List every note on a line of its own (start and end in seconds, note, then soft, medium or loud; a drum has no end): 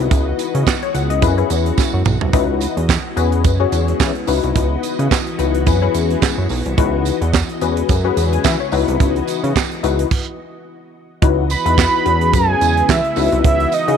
0.00 3.13 E3 medium
0.00 3.13 B3 medium
0.00 0.73 D#4 medium
0.00 0.73 E4 medium
0.00 0.73 F#4 medium
0.00 3.13 F#4 medium
0.00 0.73 B4 medium
0.00 1.21 D#5 medium
0.11 0.32 C#2 loud
0.11 kick loud
0.11 closed hi-hat medium
0.11 tambourine soft
0.39 closed hi-hat medium
0.39 tambourine medium
0.55 0.64 C#3 loud
0.55 closed hi-hat medium
0.67 kick loud
0.67 snare loud
0.67 clap medium
0.67 tambourine medium
0.82 0.94 C#5 medium
0.82 closed hi-hat soft
0.94 1.24 C#2 medium
0.94 1.09 F#5 medium
0.94 closed hi-hat medium
0.94 tambourine soft
1.10 1.36 D#5 medium
1.10 closed hi-hat medium
1.22 1.44 F#2 loud
1.22 2.32 G#3 medium
1.22 1.34 C#4 medium
1.22 1.35 E4 medium
1.22 1.35 G#4 medium
1.22 1.35 B4 loud
1.22 kick loud
1.22 closed hi-hat medium
1.22 tambourine medium
1.37 1.91 C#4 medium
1.37 1.91 E4 medium
1.37 1.91 G#4 medium
1.37 1.91 B4 medium
1.37 closed hi-hat soft
1.50 1.72 E2 medium
1.50 closed hi-hat medium
1.50 tambourine medium
1.66 closed hi-hat soft
1.78 kick loud
1.78 snare medium
1.78 tambourine medium
1.94 2.03 F#2 medium
2.05 2.18 B1 loud
2.05 mid tom loud
2.05 tambourine soft
2.21 2.31 C2 medium
2.21 floor tom medium
2.33 2.67 C#2 loud
2.33 2.80 D#4 medium
2.33 2.80 E4 medium
2.33 2.81 F#4 medium
2.33 2.81 B4 medium
2.33 3.16 D#5 medium
2.33 kick loud
2.33 closed hi-hat medium
2.33 tambourine soft
2.61 closed hi-hat medium
2.61 tambourine medium
2.77 2.98 E2 medium
2.77 closed hi-hat medium
2.89 kick loud
2.89 snare loud
2.89 clap medium
2.89 tambourine medium
3.16 3.46 E2 medium
3.16 4.27 C#3 medium
3.16 4.27 G#3 medium
3.16 7.57 B3 medium
3.16 3.51 C#4 medium
3.16 4.27 E4 medium
3.16 3.51 F#4 medium
3.16 3.51 G#4 medium
3.16 3.51 B4 medium
3.16 closed hi-hat medium
3.16 tambourine soft
3.32 closed hi-hat medium
3.44 3.66 F#2 medium
3.44 kick loud
3.44 closed hi-hat medium
3.44 tambourine medium
3.60 4.13 C#4 medium
3.60 4.13 F#4 medium
3.60 4.13 G#4 medium
3.60 4.14 C#5 loud
3.72 3.94 E2 medium
3.72 closed hi-hat medium
3.72 tambourine medium
3.88 closed hi-hat soft
4.00 4.12 E3 loud
4.00 kick loud
4.00 snare loud
4.00 clap loud
4.00 tambourine medium
4.15 closed hi-hat soft
4.27 4.40 C#2 loud
4.27 7.58 E3 medium
4.27 5.17 D#4 medium
4.27 5.17 E4 medium
4.27 5.17 F#4 medium
4.27 7.58 F#4 medium
4.27 5.18 B4 loud
4.27 5.66 D#5 medium
4.27 open hi-hat medium
4.27 tambourine medium
4.43 4.53 C2 medium
4.43 closed hi-hat medium
4.56 4.77 C#2 loud
4.56 kick loud
4.56 closed hi-hat loud
4.56 tambourine soft
4.83 closed hi-hat medium
4.83 tambourine medium
4.99 5.08 C#3 medium
4.99 closed hi-hat medium
5.11 kick loud
5.11 snare loud
5.11 clap medium
5.11 tambourine medium
5.27 closed hi-hat soft
5.38 5.68 C#2 medium
5.38 5.62 D#4 medium
5.38 5.62 E4 medium
5.38 5.63 F#4 medium
5.38 5.63 B4 medium
5.38 closed hi-hat medium
5.38 tambourine soft
5.55 closed hi-hat medium
5.66 5.88 F#2 loud
5.66 6.77 G#3 medium
5.66 5.79 C#4 medium
5.66 5.79 E4 medium
5.66 5.79 G#4 medium
5.66 5.79 B4 medium
5.66 kick loud
5.66 closed hi-hat medium
5.66 tambourine medium
5.82 6.35 C#4 medium
5.82 6.35 E4 medium
5.82 6.36 G#4 medium
5.82 6.36 B4 loud
5.94 6.16 E2 medium
5.94 closed hi-hat medium
5.94 tambourine medium
6.10 closed hi-hat soft
6.22 kick loud
6.22 snare loud
6.22 clap loud
6.22 tambourine medium
6.38 6.47 F#2 medium
6.49 6.62 B1 loud
6.49 open hi-hat medium
6.49 tambourine medium
6.66 6.75 C2 medium
6.66 closed hi-hat medium
6.77 7.11 C#2 loud
6.77 7.25 D#4 medium
6.77 7.25 E4 medium
6.77 7.25 F#4 medium
6.77 7.25 B4 loud
6.77 7.60 D#5 medium
6.77 kick loud
6.77 closed hi-hat loud
7.05 closed hi-hat medium
7.05 tambourine soft
7.21 7.43 E2 medium
7.21 closed hi-hat medium
7.33 kick loud
7.33 snare loud
7.33 clap medium
7.33 tambourine medium
7.49 closed hi-hat soft
7.61 7.83 E2 medium
7.61 8.71 C#3 medium
7.61 8.71 G#3 medium
7.61 10.09 B3 medium
7.61 7.95 C#4 medium
7.61 8.71 E4 medium
7.61 7.95 F#4 medium
7.61 7.95 G#4 medium
7.61 7.96 B4 loud
7.61 closed hi-hat medium
7.61 tambourine soft
7.77 closed hi-hat medium
7.89 8.10 F#2 medium
7.89 kick loud
7.89 closed hi-hat medium
7.89 tambourine medium
8.04 8.58 C#4 medium
8.04 8.58 F#4 medium
8.04 8.58 G#4 medium
8.04 8.58 B4 loud
8.17 8.38 E2 medium
8.17 closed hi-hat medium
8.17 tambourine medium
8.32 8.44 G#5 medium
8.32 closed hi-hat soft
8.44 8.57 E3 loud
8.44 8.59 E5 medium
8.44 kick loud
8.44 snare loud
8.44 clap loud
8.44 tambourine medium
8.60 8.87 C#5 medium
8.72 8.84 C#2 loud
8.72 10.10 E3 medium
8.72 9.62 D#4 medium
8.72 9.62 E4 medium
8.72 10.10 F#4 medium
8.72 9.62 F#4 medium
8.72 9.62 B4 loud
8.72 10.10 D#5 medium
8.72 open hi-hat medium
8.72 tambourine medium
8.88 8.97 C2 medium
8.88 closed hi-hat soft
9.00 9.21 C#2 medium
9.00 kick loud
9.00 closed hi-hat medium
9.00 tambourine soft
9.16 closed hi-hat soft
9.27 closed hi-hat medium
9.27 tambourine medium
9.44 9.53 C#3 medium
9.44 closed hi-hat medium
9.56 kick loud
9.56 snare loud
9.56 clap medium
9.56 tambourine medium
9.71 closed hi-hat soft
9.83 10.05 C#2 medium
9.83 10.07 D#4 medium
9.83 10.07 E4 medium
9.83 10.07 F#4 medium
9.83 10.07 B4 medium
9.83 closed hi-hat medium
9.83 tambourine soft
9.99 closed hi-hat medium
10.11 kick loud
10.11 crash medium
11.22 11.55 C#2 loud
11.22 12.05 E3 medium
11.22 13.97 B3 medium
11.22 11.46 D#4 medium
11.22 11.46 E4 medium
11.22 12.05 F#4 medium
11.22 11.46 F#4 medium
11.22 11.46 B4 loud
11.22 12.05 D#5 medium
11.22 kick loud
11.22 closed hi-hat loud
11.50 12.36 B5 loud
11.50 closed hi-hat medium
11.50 tambourine medium
11.65 11.87 E2 medium
11.65 12.05 D#4 medium
11.65 12.06 E4 medium
11.65 12.04 F#4 medium
11.65 12.05 B4 medium
11.65 closed hi-hat medium
11.78 kick loud
11.78 snare medium
11.78 clap medium
11.78 tambourine medium
12.05 12.35 E2 medium
12.05 13.16 C#3 medium
12.05 13.16 G#3 medium
12.05 12.95 C#4 medium
12.05 13.16 E4 medium
12.05 12.95 F#4 medium
12.05 12.95 G#4 medium
12.05 12.95 B4 medium
12.05 closed hi-hat medium
12.21 closed hi-hat medium
12.33 12.55 F#2 loud
12.33 12.92 G#5 loud
12.33 kick loud
12.33 closed hi-hat medium
12.33 tambourine medium
12.61 12.82 E2 medium
12.61 closed hi-hat medium
12.61 tambourine medium
12.77 closed hi-hat soft
12.89 13.01 E3 loud
12.89 13.45 E5 loud
12.89 kick loud
12.89 snare loud
12.89 clap loud
12.89 tambourine medium
13.04 closed hi-hat soft
13.16 13.29 C#2 loud
13.16 13.97 E3 medium
13.16 13.72 D#4 medium
13.16 13.72 E4 medium
13.16 13.97 F#4 medium
13.16 13.72 F#4 medium
13.16 13.73 B4 medium
13.16 13.97 D#5 medium
13.16 open hi-hat medium
13.16 tambourine medium
13.32 13.42 C2 loud
13.32 closed hi-hat medium
13.44 13.66 C#2 loud
13.44 13.75 E5 loud
13.44 kick loud
13.44 closed hi-hat loud
13.60 closed hi-hat soft
13.72 13.97 D#5 loud
13.72 closed hi-hat medium
13.72 tambourine soft
13.88 13.97 C#3 loud
13.88 13.97 D#4 medium
13.88 13.97 E4 medium
13.88 13.97 F#4 medium
13.88 13.97 G#4 medium
13.88 closed hi-hat medium